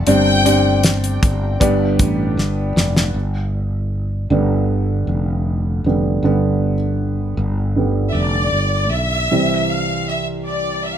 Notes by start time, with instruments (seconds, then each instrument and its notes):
0.07 fretless electric bass G1, grand piano G2 C4 D4 G4 D5, violin section G5, closed hi-hat
0.45 grand piano C4 D4 G4 D5, closed hi-hat
0.83 snare, closed hi-hat
1.04 closed hi-hat
1.23 fretless electric bass G1, kick, closed hi-hat
1.60 fretless electric bass G1, grand piano G2 B3 D4 G4 D5, kick, closed hi-hat
1.99 fretless electric bass A1, kick, closed hi-hat
2.37 fretless electric bass G1, snare
2.76 fretless electric bass F1, snare
2.97 snare
3.14 fretless electric bass G1
4.30 fretless electric bass G1, grand piano D3 G3 B3
5.07 fretless electric bass F1
5.84 fretless electric bass F1, grand piano D3 G3 B3
6.23 fretless electric bass G1, grand piano D3 G3 B3
7.37 fretless electric bass G1
7.76 grand piano D3 G3 B3
8.09 violin section E5
8.15 fretless electric bass F1, violin section D5
8.52 fretless electric bass G1
8.91 fretless electric bass B1, violin section E5
9.31 grand piano C2 C3 E3 G3 C4 C5
9.69 violin section F5
10.08 violin section E5
10.47 violin section D5
10.85 violin section E5
10.94 violin section F5